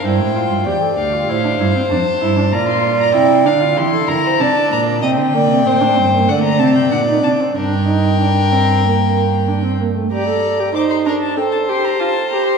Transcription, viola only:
\new Staff \with { instrumentName = "Viola" } { \time 4/4 \key g \minor \tempo 4 = 96 e'8 f'8 g'16 a'16 g'16 f'16 e'16 d'16 e'16 c'16 d'8 e'16 d'16 | f'4 e'8 d'16 f'16 e'4 d'4 | c'8 bes8 c'16 d'16 c'16 bes16 a8 c'8 d'16 ees'16 d'16 c'16 | d'8 ees'8 d'8 c'8 bes4 d'16 c'16 bes16 a16 |
g'16 a'8 g'16 ees'8 d'8 a'8 g'8 f'8 g'8 | }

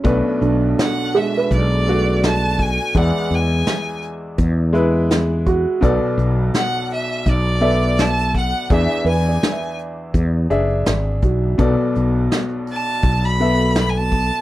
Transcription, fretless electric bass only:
\new Staff \with { instrumentName = "Fretless electric bass" } { \clef bass \time 4/4 \key b \dorian \tempo 4 = 83 b,,16 r16 b,,8 r4 b,,2 | e,16 r16 e,8 r4 e,2 | b,,16 r16 b,,8 r4 b,,2 | e,16 r16 e,8 r4 e,8 fis,,8 gis,,8 b,,8 |
b,,16 r16 b,,8 r4 b,,2 | }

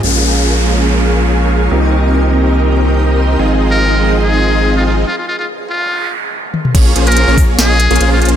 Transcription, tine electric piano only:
\new Staff \with { instrumentName = "Tine electric piano" } { \time 4/4 \key bes \dorian \tempo 4 = 143 <f aes bes des' aes'>4. <f aes bes des' aes'>2~ <f aes bes des' aes'>8 | <ees g bes c' f'>4. <ees g bes c' g'>2~ <ees g bes c' g'>8 | <f aes c' ees' aes'>4. <f aes c' ees' aes'>2~ <f aes c' ees' aes'>8 | r1 |
r1 | }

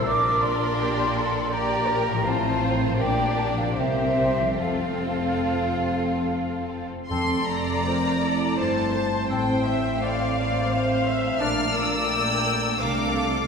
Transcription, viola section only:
\new Staff \with { instrumentName = "Viola section" } { \time 3/4 \key f \major \tempo 4 = 82 bes'2 d''8 bes'8 | c''8 c''8 d''4 c''4 | a'2~ a'8 r8 | a'4 c''8 d''8 c''4 |
c''8 e''8 d''4 c''8 e''8 | d''2 bes'8 a'8 | }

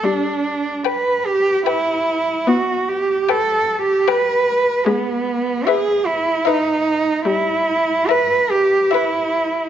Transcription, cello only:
\new Staff \with { instrumentName = "Cello" } { \time 3/4 \key g \major \tempo 4 = 74 d'4 b'8 g'8 e'4 | fis'8 g'8 \tuplet 3/2 { a'4 g'8 } b'4 | \key e \lydian b4 gis'8 e'8 dis'4 | e'4 b'8 g'8 e'4 | }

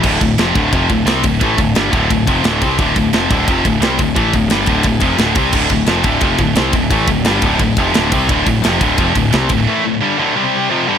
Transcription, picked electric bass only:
\new Staff \with { instrumentName = "Picked electric bass" } { \clef bass \time 4/4 \key d \minor \tempo 4 = 174 d,,8 d,,8 f,,8 d,,8 f,,8 d,,8 c,8 d,,8 | a,,8 d,,8 g,,8 d,,8 d,,8 f,,8 d,,8 c,8 | d,,8 d,,8 f,,8 d,,8 f,,8 d,,8 c,8 d,,8 | a,,8 d,,8 g,,8 d,,8 d,,8 f,,8 d,,8 c,8 |
d,,8 d,,8 f,,8 d,,8 f,,8 d,,8 c,8 d,,8 | a,,8 d,,8 g,,8 d,,8 d,,8 f,,8 d,,8 c,8 | d,,8 d,,8 f,,8 d,,8 f,,8 d,,8 c,8 d,,8 | r1 | }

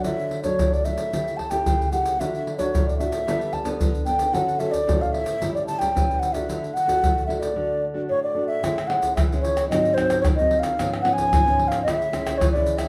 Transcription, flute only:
\new Staff \with { instrumentName = "Flute" } { \time 4/4 \key d \major \tempo 4 = 112 e''8. cis''8 d''16 e''4 a''16 g''8. fis''8 | e''8. cis''8 d''16 e''4 a''16 r8. g''8 | fis''8 e''16 d''8 f''16 e''8. d''16 a''16 g''8. fis''16 e''16~ | e''8 fis''4 e''16 d''4~ d''16 cis''16 d''8 e''16~ |
\key cis \phrygian e''8 fis''8 e''8 cis''8 dis''8 bis'8 cis''16 dis''8 f''16~ | f''8 fis''16 gis''4 eis''16 e''4 cis''16 d''8 e''16 | }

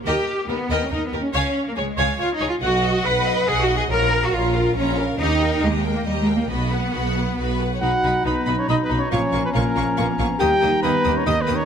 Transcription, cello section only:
\new Staff \with { instrumentName = "Cello section" } { \time 3/4 \key b \lydian \tempo 4 = 140 g'4 b8. cis'16 \tuplet 3/2 { dis'8 b8 cis'8 } | cis'8. ais16 gis4 \tuplet 3/2 { eis'8 dis'8 eis'8 } | fis'4 b'4 \tuplet 3/2 { gis'8 fis'8 gis'8 } | ais'8. fis'16 eis'4 cis'8 r8 |
dis'4 gis8. ais16 \tuplet 3/2 { g8 gis8 ais8 } | b2~ b8 r8 | b,8 b,8 b,8 b,8 b,8 b,8 | ais,8 ais,8 ais,8 ais,8 ais,8 ais,8 |
dis8 dis8 dis8 dis8 dis8 dis8 | }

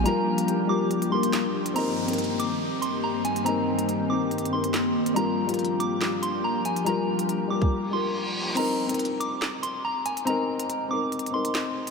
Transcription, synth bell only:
\new Staff \with { instrumentName = "Synth bell" } { \time 4/4 \key c \dorian \tempo 4 = 141 bes''4. d'''4 c'''4. | bes''4. d'''4 c'''8 bes''8 aes''8 | bes''4. d'''4 c'''4. | bes''4. d'''4 c'''8 bes''8 aes''8 |
bes''4. d'''4 c'''4. | bes''4. d'''4 c'''8 bes''8 aes''8 | bes''4. d'''4 c'''4. | }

